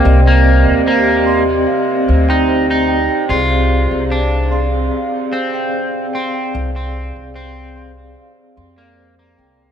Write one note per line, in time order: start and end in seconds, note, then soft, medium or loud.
0.00 9.72 C3 medium
0.00 0.20 A#3 medium
0.00 0.04 C4 medium
0.00 0.05 G4 medium
0.00 0.04 C5 medium
0.00 0.06 D5 medium
0.00 0.07 D#5 loud
0.00 1.67 F5 medium
0.00 2.29 G5 loud
0.00 1.26 C6 medium
0.04 0.63 C2 loud
0.04 1.22 C4 medium
0.04 1.22 G4 medium
0.04 0.25 C5 medium
0.04 1.22 D5 medium
0.04 1.23 D#5 loud
0.27 0.81 A#3 loud
0.45 0.66 C5 medium
0.67 1.64 D#2 medium
0.85 1.42 A#3 loud
0.85 1.25 C5 medium
1.25 2.23 C4 medium
1.25 2.24 G4 medium
1.25 2.24 D5 medium
1.25 2.24 D#5 loud
1.25 1.47 C6 medium
1.67 1.87 F5 medium
2.08 3.06 D2 loud
2.08 2.28 C5 medium
2.29 3.25 C4 medium
2.29 2.66 D#4 medium
2.29 3.25 G4 medium
2.29 3.26 D5 medium
2.29 3.26 D#5 medium
2.29 2.47 G5 loud
2.48 2.87 C5 medium
2.71 3.24 D#4 loud
2.88 3.09 G5 loud
3.10 3.21 G5 loud
3.28 3.87 C2 loud
3.28 4.46 C4 loud
3.28 4.03 F4 medium
3.28 4.46 G#4 medium
3.28 3.50 C5 medium
3.28 4.47 D5 medium
3.28 4.47 F5 loud
3.70 3.90 C5 medium
3.91 4.88 C2 medium
4.10 4.67 D4 medium
4.10 4.49 C5 medium
4.49 5.47 C4 medium
4.49 5.48 G#4 medium
4.49 5.48 D5 medium
4.49 5.49 F5 loud
4.49 4.71 C6 medium
4.91 5.12 F5 medium
5.32 6.06 C4 loud
5.32 5.52 C5 medium
5.53 6.49 C4 medium
5.53 6.49 G#4 medium
5.53 6.50 D5 medium
5.53 6.50 F5 medium
5.53 5.72 G5 loud
5.73 6.12 C5 medium
6.13 6.70 C4 loud
6.13 6.33 G5 loud
6.34 6.45 G5 loud
6.53 7.12 C2 loud
6.53 7.71 C4 loud
6.53 7.71 G#4 medium
6.53 6.74 C5 medium
6.53 7.72 D5 medium
6.53 7.72 F5 loud
6.76 7.30 C4 loud
6.94 7.14 C5 medium
7.16 8.13 C2 medium
7.34 7.91 C4 medium
7.34 7.73 C5 medium
7.74 8.72 C4 medium
7.74 8.73 G#4 medium
7.74 8.73 D5 medium
7.74 8.74 F5 loud
7.74 7.96 C6 medium
8.16 8.36 F5 medium
8.57 9.34 F2 loud
8.57 8.76 C6 medium
8.77 9.14 A#3 medium
8.77 8.96 D5 medium
8.97 9.16 C5 medium
9.19 9.72 A#3 medium
9.36 9.72 C2 medium
9.36 9.72 C4 loud
9.36 9.72 G#4 medium
9.36 9.72 D5 medium
9.36 9.57 G5 medium
9.36 9.72 G5 loud
9.57 9.69 D5 medium